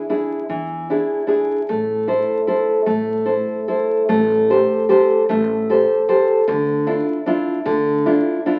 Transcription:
0.10 D4 E4 G#4
0.49 E2 E3
0.90 D4 E4 G#4
1.27 D4 E4 G#4
1.69 A1 A3
2.08 E4 A4 C5
2.47 E4 A4 C5
2.86 A1 A3
3.26 E4 A4 C5
3.68 E4 A4 C5
4.09 A1 A3
4.50 G4 A4 C5
4.89 G4 A4 C5
5.29 A1 A3
5.70 G4 A4 C5
6.09 G4 A4 C5
6.48 D2 D3
6.87 D4 E4 F4
7.26 D4 E4 F4
7.65 D2 D3
8.06 D4 E4 F4
8.46 D4 E4 F4

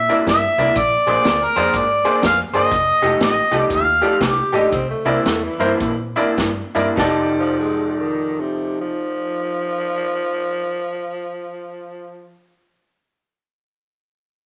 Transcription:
Already playing: E5
0.09 C3 A#3 D4 E4 A#4 D5, closed hi-hat
0.27 G2 E5, kick, snare, closed hi-hat
0.58 C2 C3 A#3 D4 E4 A#4 D5, closed hi-hat
0.75 A#1 D5, kick, closed hi-hat
1.06 A#1 A#3 D4 G#4 C5 D5, closed hi-hat
1.25 D2, snare, closed hi-hat
1.43 A#4
1.56 F2 A#3 D4 G#4 C5 D5, closed hi-hat
1.74 G#2 D5, kick, closed hi-hat
2.05 A#3 D4 G#4 C5 D5, closed hi-hat
2.22 F2 F5, kick, snare, closed hi-hat
2.53 G1 A#3 D4 G#4 C5 D5 D#5, closed hi-hat
2.71 F1, kick, closed hi-hat
3.02 F1 F3 A3 D#4 G4 A4 D#5, closed hi-hat
3.20 A1 D#5, snare, closed hi-hat
3.51 C2 F3 A3 D#4 G4 A4 D#5, closed hi-hat
3.57 D5
3.70 D#2, kick, closed hi-hat
3.74 F5
4.02 F3 A3 D#4 G4 A4 D5, closed hi-hat
4.21 C2 G4, kick, snare, closed hi-hat
4.52 A1 F3 A3 D4 D#4 G4 A4 D#5, closed hi-hat
4.72 C2 C4, kick, closed hi-hat
4.90 A3
5.05 C2 C3 A#3 C4 D4 E4 A#4 D5, closed hi-hat
5.25 E2 A3, snare, closed hi-hat
5.44 E3
5.59 G2 C3 A#3 D4 E4 A#4 C5, closed hi-hat
5.80 A#2, kick, closed hi-hat
6.16 C3 A#3 D4 E4 A#4 D5, closed hi-hat
6.37 G2, kick, snare, closed hi-hat
6.75 G2 C3 A#3 D4 E4 A#4 D5, closed hi-hat
6.96 F1 F3 D#4 G4 A4 A5, kick, snare
7.00 D5
7.39 F3
7.59 G#3
8.00 D#3
8.40 C3
8.81 F3

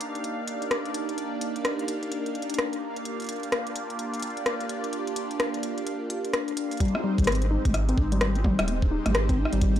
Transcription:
Already playing: A#3 D4 D#4 G4 D5 F5
0.01 closed hi-hat
0.15 closed hi-hat
0.24 closed hi-hat
0.48 closed hi-hat
0.62 closed hi-hat
0.71 cross-stick, closed hi-hat
0.85 closed hi-hat
0.94 closed hi-hat
1.09 closed hi-hat
1.18 closed hi-hat
1.41 closed hi-hat
1.56 closed hi-hat
1.65 cross-stick, closed hi-hat
1.79 closed hi-hat
1.88 closed hi-hat
2.03 closed hi-hat
2.12 closed hi-hat
2.26 closed hi-hat
2.35 closed hi-hat
2.42 closed hi-hat
2.50 closed hi-hat
2.54 closed hi-hat
2.59 cross-stick, closed hi-hat
2.73 closed hi-hat
2.96 closed hi-hat
3.05 D4 F4 G4 D5, closed hi-hat
3.20 closed hi-hat
3.22 closed hi-hat
3.24 closed hi-hat
3.27 closed hi-hat
3.29 closed hi-hat
3.36 closed hi-hat
3.40 closed hi-hat
3.43 closed hi-hat
3.52 cross-stick, closed hi-hat
3.67 closed hi-hat
3.76 closed hi-hat
3.90 closed hi-hat
3.99 closed hi-hat
4.14 closed hi-hat
4.20 closed hi-hat
4.22 closed hi-hat
4.27 closed hi-hat
4.30 closed hi-hat
4.37 closed hi-hat
4.46 cross-stick, closed hi-hat
4.61 closed hi-hat
4.69 closed hi-hat
4.84 closed hi-hat
4.93 closed hi-hat
5.07 closed hi-hat
5.16 closed hi-hat
5.31 closed hi-hat
5.40 cross-stick, closed hi-hat
5.54 closed hi-hat
5.63 closed hi-hat
5.78 closed hi-hat
5.87 closed hi-hat
6.10 closed hi-hat
6.25 closed hi-hat
6.33 cross-stick, closed hi-hat
6.48 closed hi-hat
6.57 closed hi-hat
6.71 closed hi-hat
6.77 closed hi-hat
6.80 G3 G#3 C4 D#4 G4 C5, kick, closed hi-hat
6.85 closed hi-hat
6.88 closed hi-hat
6.95 G4, cross-stick
7.04 G3
7.18 G#1, kick, closed hi-hat
7.24 C4, cross-stick, closed hi-hat
7.27 closed hi-hat
7.32 closed hi-hat
7.35 closed hi-hat
7.42 D#4, closed hi-hat
7.51 D#4
7.65 G#1 G3, kick, closed hi-hat
7.74 cross-stick, closed hi-hat
7.89 C4, closed hi-hat
7.98 G#1 D#4, kick
8.12 G3, closed hi-hat
8.21 G3, cross-stick, closed hi-hat
8.35 G4, closed hi-hat
8.44 G3, kick, mid tom
8.59 D#1, cross-stick, closed hi-hat
8.68 C4, closed hi-hat
8.82 D#4, kick
8.91 D#4
9.06 G#1 G3, cross-stick, closed hi-hat, mid tom
9.15 cross-stick, closed hi-hat
9.29 C4, kick, closed hi-hat
9.38 D#4
9.45 cross-stick
9.53 G#1 G3, closed hi-hat
9.61 G3, kick, closed hi-hat
9.76 G4, closed hi-hat

